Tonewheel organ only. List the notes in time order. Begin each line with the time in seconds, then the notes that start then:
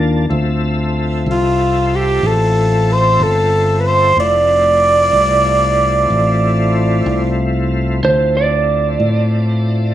Already playing: A#3 D4 F4 A5
0.29 C4 F4 A4 E5
4.19 A3 C4 E4 F4
8.02 C4 E4 F4 A4